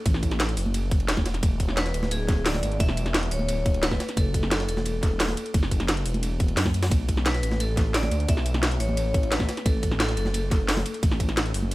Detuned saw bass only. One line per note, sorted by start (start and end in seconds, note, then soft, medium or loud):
0.06 0.56 A1 loud
0.57 1.08 F#1 loud
1.08 1.41 E1 medium
1.43 1.93 E1 loud
1.94 2.62 D1 loud
2.63 2.78 G#1 loud
2.80 3.30 E1 loud
3.31 3.99 D1 loud
4.17 4.67 F#1 loud
4.68 5.36 E1 loud
5.54 6.04 F#1 loud
6.06 6.56 E1 loud
6.57 6.90 F#2 medium
6.91 7.42 B1 loud
7.43 8.10 A1 loud
8.11 8.27 D2 loud
8.29 8.79 B1 loud
8.80 9.47 A1 loud
9.66 10.16 A1 loud
10.17 10.84 F#1 loud
11.03 11.53 A1 loud
11.54 11.75 F#1 loud